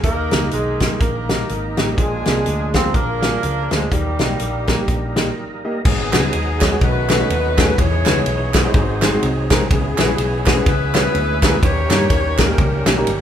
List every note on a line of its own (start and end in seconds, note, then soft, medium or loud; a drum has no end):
0.04 0.28 D#2 medium
0.04 0.77 D#3 medium
0.04 1.95 D#3 medium
0.04 0.49 A#3 medium
0.04 1.95 A#3 medium
0.04 1.94 D#4 medium
0.04 0.53 D#4 medium
0.04 0.97 G4 medium
0.04 0.49 A#4 loud
0.04 1.95 A#4 medium
0.04 kick loud
0.04 closed hi-hat medium
0.31 0.50 C#2 medium
0.31 0.43 A#3 medium
0.31 0.43 D#4 medium
0.31 0.43 G4 medium
0.31 0.43 D#5 medium
0.31 snare loud
0.31 closed hi-hat medium
0.51 0.94 B1 medium
0.51 1.02 G#3 medium
0.51 1.01 D#4 medium
0.51 1.01 G#4 medium
0.51 closed hi-hat loud
0.80 0.91 A#3 medium
0.80 0.91 D#4 medium
0.80 0.92 G4 medium
0.80 0.92 A#4 medium
0.80 kick medium
0.80 snare loud
0.80 closed hi-hat medium
1.00 1.42 A#1 medium
1.00 1.77 A#3 medium
1.00 1.95 D#4 medium
1.00 1.95 G4 medium
1.00 1.74 A#4 medium
1.00 kick loud
1.00 closed hi-hat medium
1.29 1.40 A#3 medium
1.29 1.40 D#4 medium
1.29 1.40 G4 medium
1.29 1.40 D#5 medium
1.29 snare loud
1.29 closed hi-hat medium
1.49 1.74 G#1 medium
1.49 closed hi-hat medium
1.76 1.95 A1 medium
1.76 1.88 A#3 medium
1.76 1.88 D#4 medium
1.76 1.88 G4 medium
1.76 1.88 D#5 medium
1.76 snare loud
1.76 closed hi-hat medium
1.92 2.00 G3 medium
1.97 2.22 A#1 loud
1.97 2.71 A#2 medium
1.97 3.88 F3 medium
1.97 2.74 G#3 medium
1.97 3.87 A#3 medium
1.97 3.88 D4 medium
1.97 2.91 D4 medium
1.97 2.91 F4 medium
1.97 3.88 G#4 medium
1.97 2.71 G#4 medium
1.97 kick loud
1.97 closed hi-hat medium
2.25 2.44 C2 medium
2.25 2.37 A#3 medium
2.25 2.37 F4 medium
2.25 2.37 G#4 medium
2.25 2.37 D5 medium
2.25 snare loud
2.25 closed hi-hat medium
2.46 2.88 D2 medium
2.46 closed hi-hat loud
2.74 2.85 A#3 medium
2.74 2.97 C4 medium
2.74 2.85 F4 medium
2.74 2.86 G#4 medium
2.74 2.95 C5 medium
2.74 2.86 F5 medium
2.74 kick medium
2.74 snare loud
2.74 closed hi-hat medium
2.94 3.36 A#1 loud
2.94 3.74 A#3 loud
2.94 3.88 D4 medium
2.94 3.88 F4 medium
2.94 3.72 A#4 medium
2.94 kick loud
2.94 closed hi-hat medium
3.23 3.34 A#3 medium
3.23 3.34 F4 medium
3.23 3.34 G#4 medium
3.23 3.34 D5 medium
3.23 snare loud
3.23 closed hi-hat medium
3.43 3.67 C#2 medium
3.43 closed hi-hat medium
3.71 3.89 D2 medium
3.71 3.94 G#3 medium
3.71 3.82 A#3 medium
3.71 3.82 F4 medium
3.71 3.82 G#4 medium
3.71 3.92 G#4 medium
3.71 3.83 C5 medium
3.71 snare medium
3.71 closed hi-hat medium
3.91 4.16 D#2 loud
3.91 4.64 D#3 medium
3.91 5.37 G3 medium
3.91 5.82 G3 medium
3.91 5.33 A#3 medium
3.91 5.82 A#3 medium
3.91 5.33 D#4 medium
3.91 5.82 D#4 medium
3.91 5.37 G4 medium
3.91 5.82 A#4 medium
3.91 kick loud
3.91 closed hi-hat medium
4.19 4.37 B1 medium
4.19 4.30 A#3 medium
4.19 4.31 D#4 medium
4.19 4.31 G4 medium
4.19 4.31 D#5 medium
4.19 snare loud
4.19 closed hi-hat medium
4.39 4.81 A#1 medium
4.39 closed hi-hat loud
4.67 4.79 A#3 medium
4.67 4.79 D#4 medium
4.67 4.79 G4 medium
4.67 4.79 A#4 medium
4.67 kick medium
4.67 snare loud
4.67 closed hi-hat medium
4.88 5.29 A#1 medium
4.88 kick medium
4.88 closed hi-hat medium
5.15 5.27 A#3 medium
5.15 5.27 D#4 medium
5.15 5.27 G4 medium
5.15 5.27 D#5 medium
5.15 snare loud
5.15 closed hi-hat medium
5.64 5.76 A#3 medium
5.64 5.76 D#4 medium
5.64 5.76 G4 medium
5.64 5.76 D#5 medium
5.85 6.15 G#1 loud
5.85 6.57 G#2 medium
5.85 6.80 F#3 medium
5.85 6.80 G#3 medium
5.85 6.78 B3 medium
5.85 6.80 B3 medium
5.85 6.78 D#4 medium
5.85 6.80 D#4 medium
5.85 6.78 G#4 loud
5.85 6.80 G#4 medium
5.85 kick loud
5.85 crash loud
6.12 6.31 C#2 medium
6.12 6.24 G#3 medium
6.12 6.24 B3 medium
6.12 6.24 D#4 medium
6.12 6.24 F#4 medium
6.12 6.24 B4 medium
6.12 snare loud
6.12 clap loud
6.12 ride medium
6.33 6.75 D#2 medium
6.33 ride medium
6.61 6.67 G#3 medium
6.61 6.67 B3 medium
6.61 6.67 D#4 medium
6.61 6.67 F#4 medium
6.61 6.67 C#5 medium
6.61 kick medium
6.61 snare loud
6.61 clap loud
6.61 ride medium
6.72 6.82 G#3 medium
6.72 6.82 B3 medium
6.72 6.82 D#4 medium
6.72 6.82 F#4 medium
6.72 6.82 C#5 medium
6.81 7.23 B1 loud
6.81 7.54 B2 medium
6.81 6.89 C#3 medium
6.81 7.76 A3 medium
6.81 7.76 B3 medium
6.81 7.76 C#4 medium
6.81 7.74 D#4 medium
6.81 7.74 F#4 medium
6.81 7.76 F#4 medium
6.81 7.78 B4 loud
6.81 kick loud
6.81 ride medium
6.88 7.79 D#3 medium
7.09 7.15 A3 medium
7.09 7.15 C#4 medium
7.09 7.15 D#4 medium
7.09 7.15 F#4 medium
7.09 7.16 B4 medium
7.09 snare loud
7.09 clap medium
7.09 ride medium
7.19 7.31 A3 medium
7.19 7.31 C#4 medium
7.19 7.31 D#4 medium
7.19 7.31 F#4 medium
7.19 7.31 B4 medium
7.30 7.71 D#2 loud
7.30 ride medium
7.58 7.69 A3 medium
7.58 7.69 C#4 medium
7.58 7.69 D#4 medium
7.58 7.69 F#4 medium
7.58 7.69 G#4 loud
7.58 kick loud
7.58 snare loud
7.58 clap loud
7.58 ride medium
7.78 8.02 E2 loud
7.78 8.73 E3 medium
7.78 8.50 E3 medium
7.78 8.72 G#3 medium
7.78 8.73 B3 medium
7.78 8.72 D#4 medium
7.78 8.72 G#4 medium
7.78 8.71 G#4 medium
7.78 8.54 C#5 loud
7.78 kick loud
7.78 ride medium
8.06 8.23 C#2 medium
8.06 8.17 G#3 medium
8.06 8.17 B3 medium
8.06 8.17 D#4 medium
8.06 8.17 E4 medium
8.06 8.17 B4 medium
8.06 snare loud
8.06 clap loud
8.06 ride medium
8.26 8.67 B1 loud
8.26 ride medium
8.54 8.59 G#3 medium
8.54 8.59 B3 medium
8.54 8.59 D#4 medium
8.54 9.47 D#4 medium
8.54 8.59 E4 medium
8.54 9.47 F#4 medium
8.54 8.60 B4 medium
8.54 9.22 C5 loud
8.54 kick medium
8.54 snare loud
8.54 clap loud
8.54 ride medium
8.64 8.74 G#3 medium
8.64 8.74 B3 medium
8.64 8.75 D#4 medium
8.64 8.75 E4 medium
8.64 8.75 C#5 medium
8.74 9.15 G#1 loud
8.74 9.46 G#2 medium
8.74 9.69 F#3 medium
8.74 9.69 G#3 medium
8.74 9.68 C4 medium
8.74 9.69 D#4 medium
8.74 9.68 G#4 medium
8.74 kick loud
8.74 ride medium
9.02 9.08 G#3 medium
9.02 9.08 C4 medium
9.02 9.08 D#4 medium
9.02 9.08 F#4 medium
9.02 9.08 C5 medium
9.02 snare loud
9.02 clap medium
9.02 ride medium
9.13 9.24 G#3 medium
9.13 9.24 C4 medium
9.13 9.24 D#4 medium
9.13 9.24 F#4 medium
9.13 9.24 C5 medium
9.23 9.63 C2 medium
9.23 ride medium
9.50 9.61 G#3 medium
9.50 9.61 C4 medium
9.50 9.62 D#4 medium
9.50 9.62 F#4 medium
9.50 9.62 A#4 loud
9.50 kick loud
9.50 snare loud
9.50 clap medium
9.50 ride medium
9.71 9.94 C#2 loud
9.71 10.43 C#3 medium
9.71 11.59 E3 medium
9.71 11.59 G#3 medium
9.71 11.59 B3 medium
9.71 10.63 B3 medium
9.71 11.60 C#4 medium
9.71 10.63 E4 medium
9.71 11.59 G#4 medium
9.71 10.63 G#4 medium
9.71 kick loud
9.71 ride medium
9.98 10.15 A#1 medium
9.98 10.09 G#3 medium
9.98 10.09 B3 medium
9.98 10.09 C#4 medium
9.98 10.10 E4 medium
9.98 10.10 B4 medium
9.98 snare loud
9.98 clap loud
9.98 ride medium
10.18 10.59 B1 loud
10.18 ride medium
10.46 10.52 G#3 medium
10.46 10.52 B3 medium
10.46 10.52 C#4 medium
10.46 10.52 E4 medium
10.46 10.52 B4 medium
10.46 kick loud
10.46 snare loud
10.46 clap loud
10.46 ride medium
10.56 10.67 G#3 medium
10.56 10.67 B3 medium
10.56 10.68 C#4 medium
10.56 10.68 E4 medium
10.56 10.68 B4 medium
10.66 11.07 C#2 loud
10.66 11.59 E4 medium
10.66 11.59 G#4 medium
10.66 11.63 B4 loud
10.66 kick loud
10.66 ride medium
10.94 11.00 G#3 medium
10.94 11.00 B3 medium
10.94 11.00 C#4 medium
10.94 11.00 E4 medium
10.94 11.00 C#5 medium
10.94 snare loud
10.94 clap loud
10.94 ride medium
11.05 11.16 G#3 medium
11.05 11.16 B3 medium
11.05 11.16 C#4 medium
11.05 11.16 E4 medium
11.05 11.16 B4 medium
11.15 11.55 D2 loud
11.15 ride medium
11.42 11.53 G#3 medium
11.42 11.53 B3 medium
11.42 11.53 C#4 medium
11.42 11.53 E4 medium
11.42 11.53 A#4 medium
11.42 kick loud
11.42 snare loud
11.42 clap loud
11.42 ride medium
11.63 11.86 D#2 loud
11.63 13.21 D#3 medium
11.63 12.35 D#3 medium
11.63 13.21 G3 medium
11.63 13.21 A#3 medium
11.63 13.21 C#4 medium
11.63 13.21 G4 medium
11.63 12.38 G4 medium
11.63 12.38 A#4 medium
11.63 12.39 C#5 loud
11.63 kick loud
11.63 ride medium
11.90 12.07 G2 medium
11.90 12.01 G3 medium
11.90 12.01 A#3 medium
11.90 12.01 C#4 medium
11.90 12.01 D#4 medium
11.90 12.02 A#4 medium
11.90 snare loud
11.90 clap loud
11.90 ride medium
12.10 12.51 D#2 medium
12.10 kick loud
12.10 ride medium
12.38 12.44 G3 medium
12.38 12.44 A#3 medium
12.38 12.44 C#4 medium
12.38 13.21 C#4 medium
12.38 12.44 D#4 medium
12.38 13.21 G4 medium
12.38 13.07 A#4 loud
12.38 12.44 A#4 medium
12.38 kick medium
12.38 snare loud
12.38 clap loud
12.38 ride medium
12.48 12.60 G3 medium
12.48 12.60 A#3 medium
12.48 12.60 C#4 medium
12.48 12.60 D#4 medium
12.48 12.60 A#4 medium
12.58 12.82 C#2 loud
12.58 kick loud
12.58 ride medium
12.86 13.04 B1 medium
12.86 12.92 G3 medium
12.86 12.92 A#3 medium
12.86 12.92 C#4 medium
12.86 12.92 D#4 medium
12.86 12.92 G4 medium
12.86 snare loud
12.86 clap loud
12.86 ride medium
12.97 13.08 G3 medium
12.97 13.08 A#3 medium
12.97 13.08 C#4 medium
12.97 13.08 D#4 medium
12.97 13.08 A#4 medium
13.07 13.21 G1 medium
13.07 ride medium